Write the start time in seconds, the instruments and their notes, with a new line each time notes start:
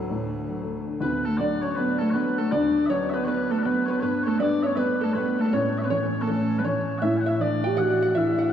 Already playing: grand piano D2 F#3, cello D2, soft synth lead A4
0.11 grand piano A2
0.25 grand piano D3
0.49 grand piano F#3
0.63 grand piano A3
0.87 grand piano D3
1.01 grand piano D2, soft synth lead B3, bagpipes B4, five-string banjo B4
1.25 soft synth lead A3, bagpipes A4, five-string banjo A4
1.37 grand piano F#3 A3 D4, soft synth lead D4, bagpipes D5, five-string banjo D5
1.61 soft synth lead C#4, bagpipes C#5, five-string banjo C#5
1.75 grand piano F#3 A3 D4, soft synth lead B3, bagpipes B4, five-string banjo B4
1.98 soft synth lead A3, bagpipes A4, five-string banjo A4
2.10 grand piano F#3 A3, bagpipes B4 C#5
2.14 soft synth lead B3, grand piano D4, five-string banjo B4
2.38 soft synth lead A3, bagpipes A4, five-string banjo A4
2.51 grand piano D2, soft synth lead D4, bagpipes D5, five-string banjo D5
2.86 grand piano F#3, bagpipes C#5 E5
2.90 grand piano B3 D4, soft synth lead C#4, five-string banjo C#5
3.09 bagpipes E5
3.14 soft synth lead B3, five-string banjo B4, bagpipes B4
3.24 grand piano F#3 B3 D4, soft synth lead B3, bagpipes B4 C#5, five-string banjo B4
3.50 soft synth lead A3, bagpipes A4, five-string banjo A4
3.58 bagpipes B4
3.62 grand piano F#3, soft synth lead B3, bagpipes A4 B4, five-string banjo B4
3.66 grand piano B3 D4
3.86 soft synth lead B3, five-string banjo B4, bagpipes C#5
3.90 bagpipes B4
4.00 grand piano G2, soft synth lead B3, five-string banjo B4, bagpipes B4 C#5
4.23 soft synth lead A3, five-string banjo A4, bagpipes C#5
4.27 bagpipes A4
4.39 grand piano G3 A3 B3, soft synth lead D4, five-string banjo D5, bagpipes D5 E5
4.63 soft synth lead C#4, five-string banjo C#5, bagpipes C#5 E5
4.75 grand piano G3 A3 B3, soft synth lead B3, five-string banjo B4, bagpipes B4 E5
5.01 soft synth lead A3, five-string banjo A4, bagpipes A4
5.13 grand piano G3 A3 B3, soft synth lead B3, five-string banjo B4, bagpipes B4 C#5
5.39 soft synth lead A3, five-string banjo A4, bagpipes A4
5.46 soft synth lead A3, five-string banjo A4, bagpipes A4
5.53 grand piano A2, soft synth lead C#4, five-string banjo C#5, bagpipes C#5
5.78 bagpipes C#5 E5
5.84 soft synth lead B3, five-string banjo B4, bagpipes B4
5.90 grand piano E3 A3 C#4, soft synth lead C#4, five-string banjo C#5, bagpipes C#5
6.21 soft synth lead A3, five-string banjo A4, bagpipes A4
6.27 grand piano E3 A3 C#4, soft synth lead A3, five-string banjo A4, bagpipes A4
6.58 soft synth lead B3, bagpipes B4, five-string banjo B4
6.64 grand piano E3 A3 C#4, soft synth lead C#4, five-string banjo C#5, bagpipes C#5
6.98 grand piano A2, five-string banjo E5, bagpipes F#5
7.02 soft synth lead E4, bagpipes E5
7.17 bagpipes F#5 G#5
7.26 soft synth lead E4, five-string banjo E5, bagpipes E5
7.39 grand piano E3 A3 D4, soft synth lead D4, five-string banjo D5, bagpipes D5
7.64 soft synth lead G4, five-string banjo G5
7.77 grand piano E3 A3 D4, soft synth lead F#4, five-string banjo F#5, bagpipes F#5
7.90 five-string banjo F#5
8.02 five-string banjo F#5
8.15 grand piano E3 A3 D4, soft synth lead E4, five-string banjo E5, bagpipes E5
8.38 five-string banjo F#5
8.50 bagpipes F#5